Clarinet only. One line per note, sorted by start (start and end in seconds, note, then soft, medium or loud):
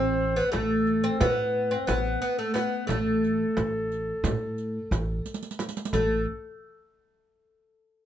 0.00 0.47 C5 loud
0.46 0.54 B4 medium
0.52 1.21 A4 medium
1.19 1.86 B4 medium
1.87 2.41 B4 medium
2.39 2.56 A4 medium
2.55 2.91 B4 medium
2.89 5.59 A4 medium
5.93 6.25 A4 medium